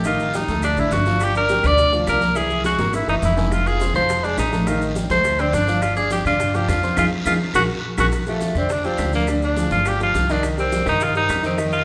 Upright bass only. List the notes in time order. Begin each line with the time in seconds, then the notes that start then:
Already playing: A1
0.48 D2
0.77 A1
0.91 G1
1.64 D2
2.07 C2
2.79 G#1
3.07 F#1
3.22 F1
3.94 F2
4.37 A1
5.10 D2
5.53 G1
6.25 G2
6.68 F2
6.97 F2
7.25 F2
7.54 A#1
7.98 A#1
8.55 F2
8.98 D2
9.71 G1
10.14 C2
10.86 G2
11.29 F2